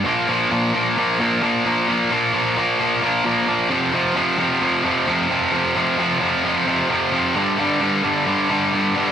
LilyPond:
\new Staff \with { instrumentName = "Distorted electric guitar" } { \clef bass \time 4/4 \key bes \mixolydian \tempo 4 = 132 <bes, f bes>8 <bes, f bes>8 <bes, f bes>8 <bes, f bes>8 <bes, f bes>8 <bes, f bes>8 <bes, f bes>8 <bes, f bes>8 | <bes, f bes>8 <bes, f bes>8 <bes, f bes>8 <bes, f bes>8 <bes, f bes>8 <bes, f bes>8 <bes, f bes>8 <bes, f bes>8 | <f, c f>8 <f, c f>8 <f, c f>8 <f, c f>8 <f, c f>8 <f, c f>8 <f, c f>8 <f, c f>8 | <f, c f>8 <f, c f>8 <f, c f>8 <f, c f>8 <f, c f>8 <f, c f>8 <f, c f>8 <f, c f>8 |
<g, d g>8 <g, d g>8 <g, d g>8 <g, d g>8 <g, d g>8 <g, d g>8 <g, d g>8 <g, d g>8 | }